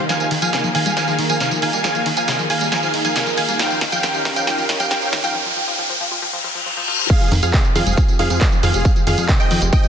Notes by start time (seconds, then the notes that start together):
Already playing: riser
0.09 D#3 F3 A#3 G#4 A#4 F5 G#5, snare, closed hi-hat, tambourine
0.20 F3, closed hi-hat, tambourine
0.31 D#3, open hi-hat
0.42 D#3 F3 A#3 G#4 A#4 F5 G#5, closed hi-hat, tambourine
0.53 C3 D#3 A#3 G#4 A#4, snare, closed hi-hat, tambourine
0.64 F3, closed hi-hat, tambourine
0.75 D#3 A#3 G#4 A#4 F5 G#5, open hi-hat
0.86 G3, closed hi-hat, tambourine
0.97 D#3 F3 A#3 G#4 A#4 F5 G#5, snare, closed hi-hat, tambourine
1.08 F3, closed hi-hat, tambourine
1.19 D#3 A#3 G#4 A#4, open hi-hat
1.30 F3 F5 G#5, closed hi-hat, tambourine
1.40 C3 D#3 A#3 G#4 A#4, snare, closed hi-hat, tambourine
1.51 D#3 F3 A#3 G#4 A#4, closed hi-hat, tambourine
1.62 D#3 F5 G#5, open hi-hat
1.73 D#3 G3 A#3 G#4 A#4, closed hi-hat, tambourine
1.84 D#3 F3 A#3 G#4 A#4 F5 G#5, snare, closed hi-hat, tambourine
1.95 F3, closed hi-hat, tambourine
2.06 D#3, open hi-hat
2.17 D#3 F3 A#3 G#4 A#4 F5 G#5, closed hi-hat, tambourine
2.28 C3 D#3 A#3 G#4 A#4, snare, closed hi-hat, tambourine
2.39 F3, closed hi-hat, tambourine
2.50 D#3 A#3 G#4 A#4 F5 G#5, open hi-hat
2.61 G3, closed hi-hat, tambourine
2.72 D#3 F3 A#3 G#4 A#4 F5 G#5, snare, closed hi-hat, tambourine
2.83 F3, closed hi-hat, tambourine
2.94 D#3 A#3 G#4 A#4, open hi-hat
3.05 F3 F5 G#5, closed hi-hat, tambourine
3.16 C3 D#3 A#3 G#4 A#4, snare, closed hi-hat, tambourine
3.27 D#3 F3 A#3 G#4 A#4, closed hi-hat, tambourine
3.37 D#3 F5 G#5, open hi-hat
3.49 D#3 G3 A#3 G#4 A#4, closed hi-hat, tambourine
3.59 D#3 F3 C#4 G4 A#4 F5 G5, snare, closed hi-hat, tambourine
3.70 F3, closed hi-hat, tambourine
3.81 D#3, snare, open hi-hat
3.92 D#3 F3 C#4 G4 A#4 F5 G5, closed hi-hat, tambourine
4.03 D#3 F3 C#4 G4 A#4 F5 G5, snare, closed hi-hat, tambourine
4.14 F3, closed hi-hat, tambourine
4.25 D#3 C#4 G4 A#4, snare, open hi-hat
4.36 F3 F5 G5, closed hi-hat, tambourine
4.47 D#3 F3 C#4 G4 A#4 F5 G5, snare, closed hi-hat, tambourine
4.58 F3, closed hi-hat, tambourine
4.69 D#3 C#4 G4 A#4, snare, open hi-hat
4.80 F3 F5 G5, closed hi-hat, tambourine
4.91 D#3 F3 C#4 G4 A#4 F5 G5, snare, closed hi-hat, tambourine
5.02 D#3 F3 C#4 G4 A#4, closed hi-hat, tambourine
5.13 D#3, snare, open hi-hat
5.24 D#3 F3 C#4 G4 A#4 F5 G5, closed hi-hat, tambourine
5.35 F3
5.46 F3
5.57 F3
5.68 F3
5.79 F3
5.90 F3
6.00 F3
6.11 F3
6.22 F3, reverse cymbal
6.33 F3
6.44 F3
6.55 F3
6.66 F3
6.77 F3
6.88 F3
6.99 F3
7.10 F3 C4 G4 G#4 F5, kick, closed hi-hat, tambourine, crash
7.21 F3, closed hi-hat, tambourine
7.32 F2 D#3, open hi-hat
7.43 F2 F3 C4 G4 G#4 F5, closed hi-hat, tambourine
7.54 C3 F3 C4 G4 G#4, kick, clap, closed hi-hat, tambourine
7.65 F3, closed hi-hat, tambourine
7.75 F2 D#3 F3 C4 G4 G#4 F5, open hi-hat
7.86 F1 G3, closed hi-hat, tambourine
7.97 F3 C4 G4 G#4, kick, closed hi-hat, tambourine
8.08 F3, closed hi-hat, tambourine
8.19 F2 D#3 F3 C4 G4 G#4 F5, open hi-hat
8.30 F2 F3, closed hi-hat, tambourine
8.41 C3 F3 C4 G4 G#4, kick, clap, closed hi-hat, tambourine
8.52 F3 C4 G4 G#4, closed hi-hat, tambourine
8.63 F2 D#3 G#4 F5, open hi-hat
8.74 F1 F3 G3 C4 G4 G#4, closed hi-hat, tambourine
8.85 F3 C4 G4 G#4, kick, closed hi-hat, tambourine
8.96 F3, closed hi-hat, tambourine
9.07 F2 D#3 G#4 F5, open hi-hat
9.18 F2 F3 C4 G4 G#4, closed hi-hat, tambourine
9.29 C3 F3 C4 G4 G#4, kick, clap, closed hi-hat, tambourine
9.40 F3 D#5 G5, closed hi-hat, tambourine
9.50 F2 D#3 F3 C4 G4 G#4, open hi-hat
9.62 F1 G3, closed hi-hat, tambourine
9.72 F3 C4 G4 G#4 D#5 G5, kick, closed hi-hat, tambourine
9.84 F3, closed hi-hat, tambourine